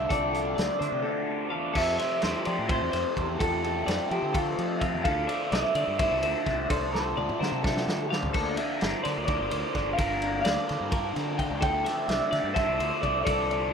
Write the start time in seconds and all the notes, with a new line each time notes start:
Already playing: A2 D3 A3 C4 D4 F4
0.09 C2 D2 D3 F3 A3 C4 D4 A4 D5, kick, closed hi-hat
0.32 F3 A3 D4, closed hi-hat
0.45 F4
0.56 D2 D3 F3 A3 C4 D4 D5, snare, closed hi-hat
0.79 D3 F3 A3 D4 C5, closed hi-hat
0.92 C3 F4
1.03 D3 F3 A3 D4 A4
1.28 D2
1.50 E2 D3 F3 A3 D4 F5
1.74 F2 C3 F3 A3 C4 A4 E5, kick, crash
1.99 F3 A3 C4 E5, snare, ride
2.21 E2 C3 F3 A3 C4 C5, snare, ride
2.45 F3 A3 C4 D5, ride
2.59 A2
2.68 F2 C3 F3 A3 C4 C5, kick, ride
2.82 E2
2.92 F2 C5, snare, ride
3.15 E2 C3 F3 A3 C4, kick, ride
3.39 E2 F2 C3 F3 A3 C4 A4, kick, ride
3.63 F3 A3 C4 A4, ride
3.86 F2 C3 F3 A3 C4 D5, snare, ride
4.10 F3 A3 C4 G4 C5, ride
4.22 D3
4.34 F2 C3 F3 A3 C4 F4 A4, kick, ride
4.58 F3, ride
4.80 C3 F3 A3 C4 F5, kick, ride
4.94 F2
5.03 D2 D3 F3 A3 D4 A4 F5, kick, ride
5.27 F3 A3 D4 E5, ride
5.51 C2 D3 F3 A3 D4 E5, snare, ride
5.75 D3 F3 A3 D4 D5, ride
5.88 G2
5.99 D3 F3 A3 D4 C5 E5, kick, ride
6.11 C2
6.23 D2 C5, ride
6.45 C2 D3 F3 A3 D4, kick, snare, ride
6.69 C2 D3 F3 A3 D4 A4 C5, kick, ride
6.92 F3 A3 D4 C5, snare
7.17 D2 D3 F3 A3 D4 D5, high tom
7.29 mid tom
7.39 D3 F3 A3 D4 A#4 C5, snare
7.52 C3
7.63 D3 F3 A3 D4 A4, kick, snare
7.77 snare
7.87 D3, snare
8.10 D3 F3 A3 D4 F5, snare
8.23 D2, floor tom
8.33 D2 D3 F3 A#3 D4 A4, kick, crash
8.57 F3 A#3 D4 E5, ride
8.81 G1 D3 F3 A#3 D4, snare, ride
9.03 D3 A#3 D4 C5 D5, snare, ride
9.07 F3
9.18 D2
9.25 D3 F3 C5 D5, kick, ride
9.29 A#3 D4
9.41 G1
9.51 D2 C5, ride
9.75 G1 D3 F3 A#3 D4, kick, snare, ride
9.93 F5
9.98 G1 D3 F3 A#3 D4 A#4, kick, ride
10.22 F3 A#3 D4, ride
10.41 D3 D5 F5, ride
10.46 D2 F3 A#3 D4, snare
10.68 D3 F3 A#3 D4 C5, snare, ride
10.81 G2
10.91 D3 F3 A#3 D4 A#4, kick, ride
11.16 D3, snare, ride
11.38 D3 F3 A#3 D4 G5, kick, ride
11.51 D2
11.61 D2 D3 F3 A3 D4 A4 G5, kick, ride
11.84 F3 A3 D4 E5, snare, ride
12.07 C2 D3 F3 A3 D4 E5, snare, ride
12.31 D3 F3 A3 D4 D5, snare, ride
12.44 G2
12.54 D3 F3 A3 D4 C5 E5, kick, snare, ride
12.68 C2
12.78 D2 C5, ride
13.02 C2 D3 F3 A3 D4 D5, kick, ride
13.20 D5 E5
13.25 C2 D3 F3 A3 D4 A4, kick, ride
13.50 F3 A3 D4, ride